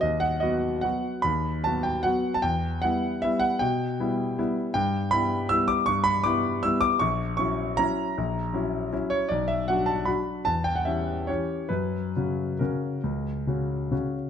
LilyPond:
<<
  \new Staff \with { instrumentName = "Grand piano" } { \time 3/4 \key e \minor \tempo 4 = 153 dis''8 fis''8 dis''4 fis''4 | b''4 a''8 g''8 fis''8. a''16 | g''4 fis''4 e''8 fis''8 | g''2~ g''8 r8 |
\key fis \phrygian g''4 b''4 e'''8 d'''8 | cis'''8 b''8 d'''4 e'''8 d'''8 | cis'''4 cis'''4 ais''4~ | ais''2~ ais''8 cis''8 |
d''8 e''8 fis''8 a''8 b''4 | a''8 g''16 fis''16 e''4 cis''4 | b'2 ais'4~ | ais'2~ ais'8 r8 | }
  \new Staff \with { instrumentName = "Grand piano" } { \time 3/4 \key e \minor dis,4 <fis b fis'>4 <fis b fis'>4 | dis,4 <fis b fis'>4 <fis b fis'>4 | e,4 <g b e'>4 <g b e'>4 | b,4 <g b e'>4 <g b e'>4 |
\key fis \phrygian g,4 <g b e'>4 <g b e'>4 | g,4 <g b e'>4 <g b e'>4 | ais,,4 <fis cis' e'>4 <fis cis' e'>4 | ais,,4 <fis cis' e'>4 <fis cis' e'>4 |
b,,4 <fis d' fis'>4 <fis d' fis'>4 | e,4 <e cis' g'>4 <e cis' g'>4 | fis,4 <cis cis' fis'>4 <cis cis' fis'>4 | cis,4 <cis cis' fis'>4 <cis cis' fis'>4 | }
>>